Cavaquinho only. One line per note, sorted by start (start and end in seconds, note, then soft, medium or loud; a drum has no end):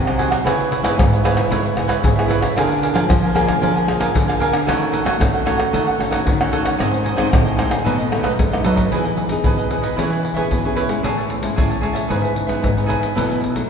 0.05 0.17 G#4 soft
0.05 0.18 C5 soft
0.05 0.17 F#5 soft
0.17 0.30 F#4 medium
0.17 0.31 G#4 medium
0.17 0.30 C5 medium
0.17 0.29 F#5 medium
0.30 0.44 G#4 soft
0.30 0.44 C5 soft
0.30 0.43 F#5 medium
0.44 0.69 E4 medium
0.44 0.70 B4 medium
0.44 0.71 C#5 medium
0.44 0.71 E5 medium
0.70 0.82 E4 medium
0.70 0.83 B4 medium
0.70 0.84 C#5 medium
0.70 0.84 E5 medium
0.83 0.93 E4 medium
0.83 0.93 B4 medium
0.83 0.94 C#5 medium
0.83 0.94 E5 medium
1.12 1.23 B4 soft
1.12 1.24 C#5 soft
1.12 1.24 E5 soft
1.24 1.36 E4 medium
1.24 1.37 B4 medium
1.24 1.37 C#5 medium
1.24 1.35 E5 medium
1.36 1.49 B4 soft
1.36 1.50 C#5 soft
1.36 1.49 E5 soft
1.49 1.62 E4 medium
1.49 1.63 B4 medium
1.49 1.63 C#5 medium
1.49 1.63 E5 medium
1.64 1.87 B4 soft
1.64 1.88 C#5 soft
1.64 1.88 E5 soft
1.88 1.98 E4 medium
1.88 1.98 B4 medium
1.88 1.99 C#5 medium
1.88 1.99 E5 medium
2.16 2.28 B4 soft
2.16 2.29 C#5 soft
2.16 2.28 E5 soft
2.28 2.41 E4 medium
2.28 2.41 B4 medium
2.28 2.41 C#5 medium
2.28 2.40 E5 medium
2.41 2.55 B4 soft
2.41 2.55 C#5 soft
2.41 2.54 E5 soft
2.56 2.80 D4 medium
2.56 2.81 A#4 medium
2.56 2.82 F5 medium
2.56 2.82 G#5 medium
2.82 2.92 D4 medium
2.82 2.93 A#4 medium
2.82 2.94 F5 medium
2.82 2.94 G#5 medium
2.94 3.04 D4 medium
2.94 3.04 A#4 medium
2.94 3.04 F5 medium
2.94 3.04 G#5 medium
3.23 3.34 A#4 soft
3.23 3.35 F5 soft
3.23 3.35 G#5 soft
3.35 3.47 D4 medium
3.35 3.47 A#4 medium
3.35 3.47 F5 medium
3.35 3.46 G#5 medium
3.47 3.61 A#4 soft
3.47 3.60 F5 soft
3.47 3.60 G#5 medium
3.61 3.74 D4 medium
3.61 3.74 A#4 medium
3.61 3.74 F5 medium
3.61 3.74 G#5 medium
3.75 3.99 A#4 soft
3.75 3.99 F5 soft
3.75 4.00 G#5 soft
4.00 4.09 D4 medium
4.00 4.10 A#4 medium
4.00 4.10 F5 medium
4.00 4.10 G#5 medium
4.27 4.39 A#4 soft
4.27 4.40 F5 soft
4.27 4.39 G#5 soft
4.39 4.52 D4 medium
4.39 4.53 A#4 medium
4.39 4.52 F5 medium
4.39 4.51 G#5 medium
4.52 4.67 A#4 soft
4.52 4.66 F5 soft
4.52 4.65 G#5 soft
4.66 4.91 D#4 medium
4.66 4.92 A4 medium
4.66 4.92 C#5 medium
4.66 4.93 F#5 medium
4.92 5.04 D#4 medium
4.92 5.04 A4 medium
4.92 5.05 C#5 medium
4.92 5.05 F#5 medium
5.05 5.15 D#4 medium
5.05 5.15 A4 medium
5.05 5.16 C#5 medium
5.05 5.16 F#5 medium
5.34 5.45 A4 soft
5.34 5.46 C#5 soft
5.34 5.46 F#5 soft
5.45 5.58 D#4 medium
5.45 5.58 A4 medium
5.45 5.58 C#5 medium
5.45 5.56 F#5 medium
5.57 5.72 A4 soft
5.57 5.72 C#5 medium
5.57 5.71 F#5 soft
5.73 5.85 D#4 medium
5.73 5.86 A4 medium
5.73 5.86 C#5 medium
5.73 5.86 F#5 medium
5.87 6.10 A4 soft
5.87 6.10 C#5 soft
5.87 6.10 F#5 soft
6.11 6.21 D#4 medium
6.11 6.21 A4 medium
6.11 6.21 C#5 medium
6.11 6.21 F#5 medium
6.41 6.51 A4 soft
6.41 6.52 C#5 soft
6.41 6.52 F#5 soft
6.52 6.64 D#4 medium
6.52 6.65 A4 medium
6.52 6.65 C#5 medium
6.52 6.63 F#5 medium
6.64 6.78 A4 soft
6.64 6.78 C#5 soft
6.64 6.77 F#5 medium
6.78 7.03 D#4 medium
6.78 7.03 G#4 medium
6.78 7.04 C5 medium
6.78 7.05 D#5 medium
7.04 7.15 D#4 medium
7.04 7.16 G#4 medium
7.04 7.16 C5 medium
7.04 7.16 D#5 medium
7.16 7.27 D#4 medium
7.16 7.27 G#4 medium
7.16 7.27 C5 medium
7.16 7.27 D#5 medium
7.44 7.56 G#4 soft
7.44 7.57 C5 soft
7.44 7.57 D#5 medium
7.56 7.70 D#4 medium
7.56 7.70 G#4 medium
7.56 7.69 C5 medium
7.56 7.67 D#5 medium
7.69 7.84 G#4 soft
7.69 7.83 C5 soft
7.69 7.82 D#5 medium
7.84 7.97 D#4 medium
7.84 7.97 A4 medium
7.84 7.98 B4 medium
7.84 7.97 D#5 medium
7.98 8.22 A4 soft
7.98 8.22 B4 soft
7.98 8.23 D#5 soft
8.22 8.33 D#4 medium
8.22 8.33 A4 medium
8.22 8.33 B4 medium
8.22 8.34 D#5 medium
8.51 8.64 A4 soft
8.51 8.64 B4 soft
8.51 8.63 D#5 soft
8.64 8.77 D#4 medium
8.64 8.77 A4 medium
8.64 8.76 B4 medium
8.64 8.75 D#5 medium
8.76 8.90 A4 soft
8.76 8.90 B4 soft
8.76 8.89 D#5 medium
8.92 9.04 E4 medium
8.92 9.04 G#4 medium
8.92 9.04 B4 medium
8.92 9.04 D#5 medium
9.05 9.17 G#4 soft
9.05 9.17 B4 soft
9.05 9.17 D#5 soft
9.17 muted cavaquinho stroke soft
9.44 9.56 E4 medium
9.44 9.57 G#4 medium
9.44 9.57 B4 medium
9.44 9.56 D#5 medium
9.57 9.69 G#4 soft
9.57 9.70 B4 soft
9.57 9.70 D#5 soft
9.69 9.82 E4 soft
9.69 9.83 G#4 soft
9.69 9.82 B4 soft
9.69 9.81 D#5 medium
9.82 9.96 G#4 soft
9.82 9.96 B4 medium
9.82 9.95 D#5 medium
9.96 10.09 E4 medium
9.96 10.10 B4 medium
9.96 10.10 C#5 medium
9.96 10.09 E5 medium
10.10 10.23 B4 soft
10.10 10.23 C#5 soft
10.10 10.23 E5 soft
10.24 muted cavaquinho stroke soft
10.34 10.62 B4 medium
10.34 10.62 C#5 medium
10.34 10.61 E5 medium
10.63 10.75 B4 soft
10.63 10.76 C#5 soft
10.63 10.76 E5 soft
10.75 10.88 E4 medium
10.75 10.89 B4 medium
10.75 10.88 C#5 medium
10.75 10.87 E5 medium
10.88 11.03 B4 soft
10.88 11.02 C#5 soft
10.88 11.02 E5 soft
11.04 11.16 G#4 medium
11.04 11.16 C#5 medium
11.04 11.16 E5 medium
11.04 11.16 A5 medium
11.18 11.29 C#5 soft
11.18 11.29 E5 soft
11.18 11.29 A5 soft
11.30 muted cavaquinho stroke soft
11.56 11.69 G#4 medium
11.56 11.69 C#5 medium
11.56 11.69 E5 medium
11.56 11.68 A5 medium
11.70 11.80 C#5 soft
11.70 11.81 E5 soft
11.70 11.82 A5 soft
11.81 11.94 G#4 medium
11.81 11.95 C#5 soft
11.81 11.93 E5 medium
11.81 11.92 A5 soft
11.93 12.09 C#5 medium
11.93 12.08 E5 medium
11.93 12.07 A5 medium
12.08 12.21 D#4 medium
12.08 12.22 G#4 medium
12.08 12.22 B4 medium
12.08 12.21 E5 medium
12.22 12.34 G#4 soft
12.22 12.34 B4 soft
12.22 12.34 E5 soft
12.34 muted cavaquinho stroke soft
12.47 12.75 G#4 soft
12.47 12.74 B4 medium
12.47 12.73 E5 medium
12.75 12.86 G#4 soft
12.75 12.87 B4 soft
12.75 12.87 E5 soft
12.86 13.00 D#4 medium
12.86 13.00 G#4 medium
12.86 12.99 B4 medium
12.86 12.98 E5 medium
12.99 13.14 G#4 soft
12.99 13.14 B4 soft
12.99 13.13 E5 soft
13.15 13.28 E4 medium
13.15 13.28 A4 medium
13.15 13.29 B4 medium
13.15 13.28 E5 medium
13.29 13.40 A4 soft
13.29 13.40 B4 soft
13.29 13.40 E5 soft
13.41 muted cavaquinho stroke soft